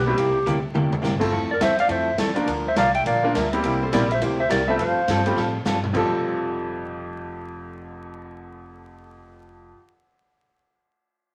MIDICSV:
0, 0, Header, 1, 9, 480
1, 0, Start_track
1, 0, Key_signature, -1, "major"
1, 0, Tempo, 288739
1, 286, Time_signature, 4, 2, 24, 8
1, 18867, End_track
2, 0, Start_track
2, 0, Title_t, "Electric slide guitar"
2, 0, Program_c, 0, 29
2, 127, Note_on_c, 0, 72, 83
2, 1007, Note_off_c, 0, 72, 0
2, 2512, Note_on_c, 0, 74, 72
2, 2678, Note_off_c, 0, 74, 0
2, 2698, Note_on_c, 0, 76, 114
2, 2983, Note_off_c, 0, 76, 0
2, 2990, Note_on_c, 0, 77, 109
2, 3167, Note_off_c, 0, 77, 0
2, 3174, Note_on_c, 0, 76, 103
2, 3655, Note_on_c, 0, 74, 73
2, 3663, Note_off_c, 0, 76, 0
2, 3925, Note_off_c, 0, 74, 0
2, 4462, Note_on_c, 0, 76, 86
2, 4630, Note_off_c, 0, 76, 0
2, 4638, Note_on_c, 0, 77, 109
2, 4899, Note_off_c, 0, 77, 0
2, 4906, Note_on_c, 0, 79, 104
2, 5092, Note_off_c, 0, 79, 0
2, 5104, Note_on_c, 0, 77, 104
2, 5573, Note_off_c, 0, 77, 0
2, 5579, Note_on_c, 0, 76, 72
2, 5847, Note_off_c, 0, 76, 0
2, 6369, Note_on_c, 0, 72, 75
2, 6544, Note_off_c, 0, 72, 0
2, 6547, Note_on_c, 0, 74, 100
2, 6837, Note_off_c, 0, 74, 0
2, 6844, Note_on_c, 0, 76, 97
2, 7004, Note_off_c, 0, 76, 0
2, 7035, Note_on_c, 0, 72, 93
2, 7318, Note_on_c, 0, 76, 102
2, 7324, Note_off_c, 0, 72, 0
2, 7494, Note_on_c, 0, 74, 88
2, 7499, Note_off_c, 0, 76, 0
2, 7779, Note_on_c, 0, 76, 99
2, 7794, Note_off_c, 0, 74, 0
2, 7956, Note_off_c, 0, 76, 0
2, 7963, Note_on_c, 0, 77, 106
2, 9338, Note_off_c, 0, 77, 0
2, 18867, End_track
3, 0, Start_track
3, 0, Title_t, "Clarinet"
3, 0, Program_c, 1, 71
3, 138, Note_on_c, 1, 67, 74
3, 1013, Note_off_c, 1, 67, 0
3, 2535, Note_on_c, 1, 70, 79
3, 2727, Note_on_c, 1, 72, 93
3, 2751, Note_off_c, 1, 70, 0
3, 2999, Note_on_c, 1, 74, 81
3, 3024, Note_off_c, 1, 72, 0
3, 3159, Note_off_c, 1, 74, 0
3, 3169, Note_on_c, 1, 72, 84
3, 3613, Note_off_c, 1, 72, 0
3, 3624, Note_on_c, 1, 69, 61
3, 3908, Note_off_c, 1, 69, 0
3, 4451, Note_on_c, 1, 72, 72
3, 4597, Note_off_c, 1, 72, 0
3, 4607, Note_on_c, 1, 74, 95
3, 4889, Note_on_c, 1, 76, 78
3, 4914, Note_off_c, 1, 74, 0
3, 5079, Note_off_c, 1, 76, 0
3, 5092, Note_on_c, 1, 74, 88
3, 5534, Note_off_c, 1, 74, 0
3, 5570, Note_on_c, 1, 70, 62
3, 5842, Note_off_c, 1, 70, 0
3, 6390, Note_on_c, 1, 69, 67
3, 6558, Note_on_c, 1, 70, 80
3, 6583, Note_off_c, 1, 69, 0
3, 6837, Note_off_c, 1, 70, 0
3, 6876, Note_on_c, 1, 72, 74
3, 7021, Note_off_c, 1, 72, 0
3, 7029, Note_on_c, 1, 67, 77
3, 7292, Note_off_c, 1, 67, 0
3, 7318, Note_on_c, 1, 72, 80
3, 7481, Note_off_c, 1, 72, 0
3, 7493, Note_on_c, 1, 70, 70
3, 7764, Note_off_c, 1, 70, 0
3, 7802, Note_on_c, 1, 72, 80
3, 7964, Note_off_c, 1, 72, 0
3, 7981, Note_on_c, 1, 72, 86
3, 9347, Note_off_c, 1, 72, 0
3, 18867, End_track
4, 0, Start_track
4, 0, Title_t, "Upright piano"
4, 0, Program_c, 2, 0
4, 101, Note_on_c, 2, 55, 73
4, 109, Note_on_c, 2, 58, 66
4, 117, Note_on_c, 2, 60, 60
4, 117, Note_on_c, 2, 64, 72
4, 127, Note_on_c, 2, 67, 73
4, 267, Note_off_c, 2, 55, 0
4, 271, Note_off_c, 2, 58, 0
4, 275, Note_off_c, 2, 60, 0
4, 275, Note_off_c, 2, 64, 0
4, 280, Note_off_c, 2, 67, 0
4, 1986, Note_on_c, 2, 57, 73
4, 1989, Note_on_c, 2, 60, 68
4, 1994, Note_on_c, 2, 64, 67
4, 2002, Note_on_c, 2, 65, 70
4, 2012, Note_on_c, 2, 69, 74
4, 2169, Note_off_c, 2, 57, 0
4, 2170, Note_off_c, 2, 60, 0
4, 2173, Note_off_c, 2, 64, 0
4, 2177, Note_off_c, 2, 65, 0
4, 2182, Note_off_c, 2, 69, 0
4, 3903, Note_on_c, 2, 53, 72
4, 3919, Note_on_c, 2, 58, 69
4, 3919, Note_on_c, 2, 62, 68
4, 3922, Note_on_c, 2, 65, 68
4, 3938, Note_on_c, 2, 70, 82
4, 4087, Note_off_c, 2, 53, 0
4, 4095, Note_off_c, 2, 58, 0
4, 4095, Note_off_c, 2, 62, 0
4, 4097, Note_off_c, 2, 65, 0
4, 4104, Note_off_c, 2, 70, 0
4, 5374, Note_on_c, 2, 53, 77
4, 5374, Note_on_c, 2, 58, 75
4, 5386, Note_on_c, 2, 62, 71
4, 5390, Note_on_c, 2, 65, 74
4, 5395, Note_on_c, 2, 70, 89
4, 5543, Note_off_c, 2, 53, 0
4, 5543, Note_off_c, 2, 58, 0
4, 5548, Note_off_c, 2, 62, 0
4, 5550, Note_off_c, 2, 65, 0
4, 5553, Note_off_c, 2, 70, 0
4, 5855, Note_on_c, 2, 58, 68
4, 5858, Note_on_c, 2, 55, 69
4, 5864, Note_on_c, 2, 60, 66
4, 5872, Note_on_c, 2, 64, 67
4, 5888, Note_on_c, 2, 67, 82
4, 6485, Note_off_c, 2, 58, 0
4, 6487, Note_off_c, 2, 55, 0
4, 6489, Note_off_c, 2, 60, 0
4, 6494, Note_off_c, 2, 64, 0
4, 6501, Note_off_c, 2, 67, 0
4, 6528, Note_on_c, 2, 55, 73
4, 6537, Note_on_c, 2, 58, 66
4, 6547, Note_on_c, 2, 60, 67
4, 6552, Note_on_c, 2, 64, 72
4, 6554, Note_on_c, 2, 67, 75
4, 6792, Note_off_c, 2, 55, 0
4, 6797, Note_off_c, 2, 58, 0
4, 6802, Note_off_c, 2, 60, 0
4, 6804, Note_off_c, 2, 64, 0
4, 6805, Note_off_c, 2, 67, 0
4, 7777, Note_on_c, 2, 55, 64
4, 7795, Note_on_c, 2, 57, 61
4, 7795, Note_on_c, 2, 60, 64
4, 7806, Note_on_c, 2, 65, 65
4, 7815, Note_on_c, 2, 69, 77
4, 7945, Note_off_c, 2, 55, 0
4, 7953, Note_off_c, 2, 57, 0
4, 7954, Note_off_c, 2, 60, 0
4, 7959, Note_off_c, 2, 65, 0
4, 7964, Note_off_c, 2, 69, 0
4, 8738, Note_on_c, 2, 57, 65
4, 8742, Note_on_c, 2, 55, 66
4, 8747, Note_on_c, 2, 60, 58
4, 8749, Note_on_c, 2, 65, 61
4, 8765, Note_on_c, 2, 67, 75
4, 8905, Note_off_c, 2, 57, 0
4, 8907, Note_off_c, 2, 55, 0
4, 8910, Note_off_c, 2, 60, 0
4, 8911, Note_off_c, 2, 65, 0
4, 8919, Note_off_c, 2, 67, 0
4, 9864, Note_on_c, 2, 41, 66
4, 9878, Note_on_c, 2, 53, 62
4, 9889, Note_on_c, 2, 60, 57
4, 9909, Note_on_c, 2, 67, 64
4, 9912, Note_on_c, 2, 69, 74
4, 16207, Note_off_c, 2, 41, 0
4, 16215, Note_off_c, 2, 53, 0
4, 16220, Note_off_c, 2, 60, 0
4, 16230, Note_off_c, 2, 67, 0
4, 16232, Note_off_c, 2, 69, 0
4, 18867, End_track
5, 0, Start_track
5, 0, Title_t, "Hollow-body jazz guitar"
5, 0, Program_c, 3, 26
5, 286, Note_on_c, 3, 48, 56
5, 287, Note_on_c, 3, 55, 55
5, 296, Note_on_c, 3, 67, 68
5, 300, Note_on_c, 3, 58, 57
5, 301, Note_on_c, 3, 64, 65
5, 614, Note_off_c, 3, 48, 0
5, 615, Note_off_c, 3, 55, 0
5, 619, Note_off_c, 3, 67, 0
5, 621, Note_off_c, 3, 58, 0
5, 621, Note_off_c, 3, 64, 0
5, 767, Note_on_c, 3, 48, 83
5, 775, Note_on_c, 3, 55, 73
5, 778, Note_on_c, 3, 58, 84
5, 781, Note_on_c, 3, 64, 83
5, 788, Note_on_c, 3, 67, 87
5, 950, Note_off_c, 3, 48, 0
5, 954, Note_off_c, 3, 55, 0
5, 956, Note_off_c, 3, 58, 0
5, 957, Note_off_c, 3, 64, 0
5, 961, Note_off_c, 3, 67, 0
5, 1226, Note_on_c, 3, 48, 53
5, 1240, Note_on_c, 3, 64, 61
5, 1240, Note_on_c, 3, 67, 66
5, 1241, Note_on_c, 3, 55, 55
5, 1241, Note_on_c, 3, 58, 56
5, 1563, Note_off_c, 3, 48, 0
5, 1570, Note_off_c, 3, 64, 0
5, 1571, Note_off_c, 3, 55, 0
5, 1571, Note_off_c, 3, 58, 0
5, 1571, Note_off_c, 3, 67, 0
5, 1693, Note_on_c, 3, 48, 63
5, 1693, Note_on_c, 3, 58, 77
5, 1694, Note_on_c, 3, 55, 67
5, 1696, Note_on_c, 3, 64, 70
5, 1705, Note_on_c, 3, 67, 67
5, 1893, Note_off_c, 3, 48, 0
5, 1893, Note_off_c, 3, 55, 0
5, 1893, Note_off_c, 3, 58, 0
5, 1895, Note_off_c, 3, 64, 0
5, 1899, Note_off_c, 3, 67, 0
5, 2179, Note_on_c, 3, 53, 58
5, 2182, Note_on_c, 3, 57, 51
5, 2186, Note_on_c, 3, 69, 63
5, 2187, Note_on_c, 3, 64, 58
5, 2191, Note_on_c, 3, 60, 62
5, 2520, Note_off_c, 3, 53, 0
5, 2522, Note_off_c, 3, 57, 0
5, 2524, Note_off_c, 3, 64, 0
5, 2524, Note_off_c, 3, 69, 0
5, 2526, Note_off_c, 3, 60, 0
5, 2665, Note_on_c, 3, 53, 71
5, 2666, Note_on_c, 3, 57, 75
5, 2670, Note_on_c, 3, 60, 78
5, 2671, Note_on_c, 3, 64, 86
5, 2671, Note_on_c, 3, 69, 80
5, 2859, Note_off_c, 3, 53, 0
5, 2859, Note_off_c, 3, 57, 0
5, 2861, Note_off_c, 3, 60, 0
5, 2862, Note_off_c, 3, 64, 0
5, 2862, Note_off_c, 3, 69, 0
5, 3130, Note_on_c, 3, 53, 60
5, 3132, Note_on_c, 3, 57, 53
5, 3133, Note_on_c, 3, 60, 61
5, 3134, Note_on_c, 3, 64, 58
5, 3137, Note_on_c, 3, 69, 70
5, 3476, Note_off_c, 3, 53, 0
5, 3476, Note_off_c, 3, 57, 0
5, 3477, Note_off_c, 3, 60, 0
5, 3477, Note_off_c, 3, 64, 0
5, 3479, Note_off_c, 3, 69, 0
5, 3625, Note_on_c, 3, 53, 64
5, 3627, Note_on_c, 3, 57, 67
5, 3632, Note_on_c, 3, 60, 76
5, 3634, Note_on_c, 3, 64, 69
5, 3637, Note_on_c, 3, 69, 71
5, 3819, Note_off_c, 3, 53, 0
5, 3820, Note_off_c, 3, 57, 0
5, 3822, Note_off_c, 3, 60, 0
5, 3823, Note_off_c, 3, 64, 0
5, 3825, Note_off_c, 3, 69, 0
5, 4090, Note_on_c, 3, 50, 54
5, 4101, Note_on_c, 3, 53, 54
5, 4102, Note_on_c, 3, 58, 59
5, 4102, Note_on_c, 3, 62, 59
5, 4111, Note_on_c, 3, 70, 60
5, 4435, Note_off_c, 3, 50, 0
5, 4441, Note_off_c, 3, 53, 0
5, 4441, Note_off_c, 3, 58, 0
5, 4441, Note_off_c, 3, 62, 0
5, 4446, Note_off_c, 3, 70, 0
5, 4594, Note_on_c, 3, 50, 76
5, 4596, Note_on_c, 3, 53, 85
5, 4602, Note_on_c, 3, 58, 91
5, 4603, Note_on_c, 3, 62, 84
5, 4611, Note_on_c, 3, 70, 87
5, 4784, Note_off_c, 3, 50, 0
5, 4784, Note_off_c, 3, 53, 0
5, 4787, Note_off_c, 3, 58, 0
5, 4788, Note_off_c, 3, 62, 0
5, 4792, Note_off_c, 3, 70, 0
5, 5078, Note_on_c, 3, 50, 55
5, 5080, Note_on_c, 3, 53, 62
5, 5084, Note_on_c, 3, 58, 61
5, 5092, Note_on_c, 3, 62, 68
5, 5092, Note_on_c, 3, 70, 63
5, 5409, Note_off_c, 3, 50, 0
5, 5411, Note_off_c, 3, 53, 0
5, 5412, Note_off_c, 3, 58, 0
5, 5416, Note_off_c, 3, 70, 0
5, 5417, Note_off_c, 3, 62, 0
5, 5561, Note_on_c, 3, 50, 73
5, 5565, Note_on_c, 3, 53, 69
5, 5568, Note_on_c, 3, 58, 68
5, 5569, Note_on_c, 3, 62, 72
5, 5572, Note_on_c, 3, 70, 79
5, 5747, Note_off_c, 3, 50, 0
5, 5749, Note_off_c, 3, 53, 0
5, 5751, Note_off_c, 3, 58, 0
5, 5751, Note_off_c, 3, 62, 0
5, 5752, Note_off_c, 3, 70, 0
5, 6051, Note_on_c, 3, 48, 57
5, 6052, Note_on_c, 3, 55, 57
5, 6054, Note_on_c, 3, 58, 57
5, 6057, Note_on_c, 3, 64, 62
5, 6066, Note_on_c, 3, 67, 63
5, 6376, Note_off_c, 3, 48, 0
5, 6376, Note_off_c, 3, 55, 0
5, 6378, Note_off_c, 3, 58, 0
5, 6379, Note_off_c, 3, 64, 0
5, 6384, Note_off_c, 3, 67, 0
5, 6517, Note_on_c, 3, 48, 79
5, 6523, Note_on_c, 3, 55, 71
5, 6526, Note_on_c, 3, 58, 84
5, 6532, Note_on_c, 3, 64, 91
5, 6537, Note_on_c, 3, 67, 96
5, 6705, Note_off_c, 3, 48, 0
5, 6708, Note_off_c, 3, 55, 0
5, 6710, Note_off_c, 3, 58, 0
5, 6712, Note_off_c, 3, 64, 0
5, 6715, Note_off_c, 3, 67, 0
5, 6994, Note_on_c, 3, 48, 55
5, 7000, Note_on_c, 3, 55, 54
5, 7003, Note_on_c, 3, 58, 59
5, 7012, Note_on_c, 3, 67, 59
5, 7015, Note_on_c, 3, 64, 57
5, 7328, Note_off_c, 3, 48, 0
5, 7331, Note_off_c, 3, 55, 0
5, 7332, Note_off_c, 3, 58, 0
5, 7337, Note_off_c, 3, 67, 0
5, 7338, Note_off_c, 3, 64, 0
5, 7463, Note_on_c, 3, 48, 64
5, 7467, Note_on_c, 3, 55, 75
5, 7476, Note_on_c, 3, 67, 75
5, 7483, Note_on_c, 3, 58, 69
5, 7483, Note_on_c, 3, 64, 70
5, 7658, Note_off_c, 3, 48, 0
5, 7660, Note_off_c, 3, 55, 0
5, 7665, Note_off_c, 3, 67, 0
5, 7668, Note_off_c, 3, 58, 0
5, 7668, Note_off_c, 3, 64, 0
5, 7973, Note_on_c, 3, 53, 58
5, 7975, Note_on_c, 3, 55, 55
5, 7978, Note_on_c, 3, 60, 61
5, 7981, Note_on_c, 3, 69, 70
5, 7990, Note_on_c, 3, 65, 60
5, 8297, Note_off_c, 3, 53, 0
5, 8299, Note_off_c, 3, 55, 0
5, 8300, Note_off_c, 3, 60, 0
5, 8301, Note_off_c, 3, 69, 0
5, 8306, Note_off_c, 3, 65, 0
5, 8469, Note_on_c, 3, 53, 70
5, 8474, Note_on_c, 3, 55, 77
5, 8475, Note_on_c, 3, 60, 83
5, 8484, Note_on_c, 3, 65, 87
5, 8485, Note_on_c, 3, 69, 87
5, 8642, Note_off_c, 3, 53, 0
5, 8644, Note_off_c, 3, 55, 0
5, 8644, Note_off_c, 3, 60, 0
5, 8649, Note_off_c, 3, 65, 0
5, 8649, Note_off_c, 3, 69, 0
5, 8915, Note_on_c, 3, 53, 53
5, 8923, Note_on_c, 3, 55, 52
5, 8930, Note_on_c, 3, 65, 56
5, 8938, Note_on_c, 3, 69, 63
5, 8939, Note_on_c, 3, 60, 63
5, 9249, Note_off_c, 3, 53, 0
5, 9253, Note_off_c, 3, 55, 0
5, 9256, Note_off_c, 3, 65, 0
5, 9260, Note_off_c, 3, 69, 0
5, 9261, Note_off_c, 3, 60, 0
5, 9400, Note_on_c, 3, 53, 64
5, 9408, Note_on_c, 3, 65, 72
5, 9410, Note_on_c, 3, 55, 74
5, 9410, Note_on_c, 3, 60, 67
5, 9417, Note_on_c, 3, 69, 74
5, 9587, Note_off_c, 3, 53, 0
5, 9591, Note_off_c, 3, 65, 0
5, 9592, Note_off_c, 3, 55, 0
5, 9592, Note_off_c, 3, 60, 0
5, 9596, Note_off_c, 3, 69, 0
5, 9875, Note_on_c, 3, 53, 62
5, 9895, Note_on_c, 3, 55, 71
5, 9901, Note_on_c, 3, 60, 69
5, 9909, Note_on_c, 3, 65, 77
5, 9913, Note_on_c, 3, 69, 74
5, 16213, Note_off_c, 3, 53, 0
5, 16223, Note_off_c, 3, 55, 0
5, 16226, Note_off_c, 3, 60, 0
5, 16230, Note_off_c, 3, 65, 0
5, 16232, Note_off_c, 3, 69, 0
5, 18867, End_track
6, 0, Start_track
6, 0, Title_t, "Upright bass"
6, 0, Program_c, 4, 32
6, 0, Note_on_c, 4, 35, 90
6, 272, Note_off_c, 4, 35, 0
6, 768, Note_on_c, 4, 38, 89
6, 1226, Note_off_c, 4, 38, 0
6, 1236, Note_on_c, 4, 40, 80
6, 1698, Note_off_c, 4, 40, 0
6, 1708, Note_on_c, 4, 43, 90
6, 2181, Note_off_c, 4, 43, 0
6, 2191, Note_on_c, 4, 41, 83
6, 2663, Note_off_c, 4, 41, 0
6, 2674, Note_on_c, 4, 40, 92
6, 3131, Note_off_c, 4, 40, 0
6, 3141, Note_on_c, 4, 41, 85
6, 3614, Note_off_c, 4, 41, 0
6, 3624, Note_on_c, 4, 40, 84
6, 3908, Note_off_c, 4, 40, 0
6, 4115, Note_on_c, 4, 38, 92
6, 4585, Note_off_c, 4, 38, 0
6, 4595, Note_on_c, 4, 36, 93
6, 5065, Note_off_c, 4, 36, 0
6, 5076, Note_on_c, 4, 34, 83
6, 5546, Note_off_c, 4, 34, 0
6, 5568, Note_on_c, 4, 38, 88
6, 6032, Note_off_c, 4, 38, 0
6, 6041, Note_on_c, 4, 36, 90
6, 6508, Note_off_c, 4, 36, 0
6, 6527, Note_on_c, 4, 34, 98
6, 6992, Note_off_c, 4, 34, 0
6, 7007, Note_on_c, 4, 38, 85
6, 7471, Note_off_c, 4, 38, 0
6, 7486, Note_on_c, 4, 36, 82
6, 7951, Note_off_c, 4, 36, 0
6, 7960, Note_on_c, 4, 41, 85
6, 8237, Note_off_c, 4, 41, 0
6, 8437, Note_on_c, 4, 43, 96
6, 8907, Note_off_c, 4, 43, 0
6, 8919, Note_on_c, 4, 45, 88
6, 9388, Note_off_c, 4, 45, 0
6, 9395, Note_on_c, 4, 43, 81
6, 9862, Note_off_c, 4, 43, 0
6, 9872, Note_on_c, 4, 29, 91
6, 16145, Note_off_c, 4, 29, 0
6, 18867, End_track
7, 0, Start_track
7, 0, Title_t, "Cymbal swell"
7, 10177, Note_on_c, 9, 59, 40
7, 13612, Note_off_c, 9, 59, 0
7, 18867, End_track
8, 0, Start_track
8, 0, Title_t, "Muted upright bass strokes"
8, 3934, Note_on_c, 9, 29, 40
8, 4100, Note_off_c, 9, 29, 0
8, 8255, Note_on_c, 9, 29, 37
8, 8421, Note_off_c, 9, 29, 0
8, 18867, End_track
9, 0, Start_track
9, 0, Title_t, "Drums"
9, 290, Note_on_c, 9, 51, 64
9, 291, Note_on_c, 9, 36, 23
9, 456, Note_off_c, 9, 51, 0
9, 457, Note_off_c, 9, 36, 0
9, 765, Note_on_c, 9, 44, 76
9, 765, Note_on_c, 9, 48, 53
9, 931, Note_off_c, 9, 44, 0
9, 931, Note_off_c, 9, 48, 0
9, 1251, Note_on_c, 9, 48, 75
9, 1417, Note_off_c, 9, 48, 0
9, 1536, Note_on_c, 9, 43, 80
9, 1702, Note_off_c, 9, 43, 0
9, 1722, Note_on_c, 9, 38, 59
9, 1722, Note_on_c, 9, 44, 57
9, 1888, Note_off_c, 9, 38, 0
9, 1888, Note_off_c, 9, 44, 0
9, 2011, Note_on_c, 9, 49, 74
9, 2013, Note_on_c, 9, 36, 66
9, 2177, Note_off_c, 9, 49, 0
9, 2179, Note_off_c, 9, 36, 0
9, 2196, Note_on_c, 9, 36, 25
9, 2362, Note_off_c, 9, 36, 0
9, 2672, Note_on_c, 9, 38, 77
9, 2672, Note_on_c, 9, 44, 62
9, 2672, Note_on_c, 9, 51, 75
9, 2674, Note_on_c, 9, 36, 21
9, 2839, Note_off_c, 9, 38, 0
9, 2839, Note_off_c, 9, 44, 0
9, 2839, Note_off_c, 9, 51, 0
9, 2840, Note_off_c, 9, 36, 0
9, 2966, Note_on_c, 9, 51, 51
9, 3132, Note_off_c, 9, 51, 0
9, 3140, Note_on_c, 9, 51, 61
9, 3149, Note_on_c, 9, 36, 22
9, 3307, Note_off_c, 9, 51, 0
9, 3315, Note_off_c, 9, 36, 0
9, 3626, Note_on_c, 9, 38, 79
9, 3626, Note_on_c, 9, 44, 55
9, 3626, Note_on_c, 9, 51, 73
9, 3632, Note_on_c, 9, 36, 27
9, 3792, Note_off_c, 9, 38, 0
9, 3792, Note_off_c, 9, 44, 0
9, 3792, Note_off_c, 9, 51, 0
9, 3798, Note_off_c, 9, 36, 0
9, 3922, Note_on_c, 9, 51, 46
9, 4088, Note_off_c, 9, 51, 0
9, 4113, Note_on_c, 9, 51, 61
9, 4115, Note_on_c, 9, 36, 23
9, 4280, Note_off_c, 9, 51, 0
9, 4282, Note_off_c, 9, 36, 0
9, 4593, Note_on_c, 9, 38, 86
9, 4593, Note_on_c, 9, 44, 64
9, 4593, Note_on_c, 9, 51, 75
9, 4598, Note_on_c, 9, 36, 27
9, 4759, Note_off_c, 9, 38, 0
9, 4759, Note_off_c, 9, 44, 0
9, 4759, Note_off_c, 9, 51, 0
9, 4765, Note_off_c, 9, 36, 0
9, 4894, Note_on_c, 9, 51, 47
9, 5061, Note_off_c, 9, 51, 0
9, 5081, Note_on_c, 9, 36, 25
9, 5083, Note_on_c, 9, 51, 64
9, 5247, Note_off_c, 9, 36, 0
9, 5249, Note_off_c, 9, 51, 0
9, 5564, Note_on_c, 9, 36, 29
9, 5568, Note_on_c, 9, 38, 77
9, 5568, Note_on_c, 9, 44, 55
9, 5568, Note_on_c, 9, 51, 78
9, 5731, Note_off_c, 9, 36, 0
9, 5734, Note_off_c, 9, 38, 0
9, 5734, Note_off_c, 9, 44, 0
9, 5734, Note_off_c, 9, 51, 0
9, 5864, Note_on_c, 9, 51, 48
9, 6030, Note_off_c, 9, 51, 0
9, 6042, Note_on_c, 9, 51, 62
9, 6044, Note_on_c, 9, 36, 22
9, 6209, Note_off_c, 9, 51, 0
9, 6210, Note_off_c, 9, 36, 0
9, 6526, Note_on_c, 9, 38, 82
9, 6526, Note_on_c, 9, 44, 62
9, 6526, Note_on_c, 9, 51, 72
9, 6527, Note_on_c, 9, 36, 28
9, 6693, Note_off_c, 9, 36, 0
9, 6693, Note_off_c, 9, 38, 0
9, 6693, Note_off_c, 9, 44, 0
9, 6693, Note_off_c, 9, 51, 0
9, 6826, Note_on_c, 9, 51, 52
9, 6992, Note_off_c, 9, 51, 0
9, 7008, Note_on_c, 9, 36, 21
9, 7008, Note_on_c, 9, 51, 64
9, 7174, Note_off_c, 9, 51, 0
9, 7175, Note_off_c, 9, 36, 0
9, 7487, Note_on_c, 9, 38, 73
9, 7487, Note_on_c, 9, 44, 71
9, 7487, Note_on_c, 9, 51, 79
9, 7488, Note_on_c, 9, 36, 25
9, 7653, Note_off_c, 9, 38, 0
9, 7653, Note_off_c, 9, 44, 0
9, 7653, Note_off_c, 9, 51, 0
9, 7654, Note_off_c, 9, 36, 0
9, 7962, Note_on_c, 9, 51, 62
9, 7965, Note_on_c, 9, 36, 26
9, 8128, Note_off_c, 9, 51, 0
9, 8131, Note_off_c, 9, 36, 0
9, 8443, Note_on_c, 9, 36, 27
9, 8444, Note_on_c, 9, 38, 83
9, 8444, Note_on_c, 9, 44, 65
9, 8444, Note_on_c, 9, 51, 77
9, 8609, Note_off_c, 9, 36, 0
9, 8610, Note_off_c, 9, 38, 0
9, 8610, Note_off_c, 9, 44, 0
9, 8610, Note_off_c, 9, 51, 0
9, 8738, Note_on_c, 9, 51, 47
9, 8904, Note_off_c, 9, 51, 0
9, 8915, Note_on_c, 9, 38, 47
9, 9082, Note_off_c, 9, 38, 0
9, 9400, Note_on_c, 9, 38, 84
9, 9400, Note_on_c, 9, 44, 62
9, 9566, Note_off_c, 9, 38, 0
9, 9566, Note_off_c, 9, 44, 0
9, 9701, Note_on_c, 9, 47, 73
9, 9867, Note_off_c, 9, 47, 0
9, 9879, Note_on_c, 9, 36, 55
9, 9883, Note_on_c, 9, 49, 56
9, 10046, Note_off_c, 9, 36, 0
9, 10049, Note_off_c, 9, 49, 0
9, 18867, End_track
0, 0, End_of_file